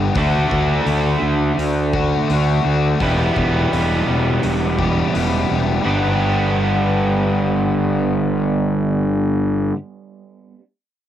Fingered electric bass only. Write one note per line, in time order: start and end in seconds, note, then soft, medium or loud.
0.15 0.44 D2 medium
0.51 0.80 D2 medium
0.86 1.15 D2 medium
1.22 1.51 D2 medium
1.58 2.15 D2 medium
2.30 2.58 D2 medium
2.65 2.94 D2 medium
3.01 3.29 E1 medium
3.37 3.65 E1 medium
3.72 4.01 E1 medium
4.08 4.36 E1 medium
4.44 5.01 E1 medium
5.15 5.44 E1 medium
5.51 5.79 E1 medium
5.85 9.71 G1 medium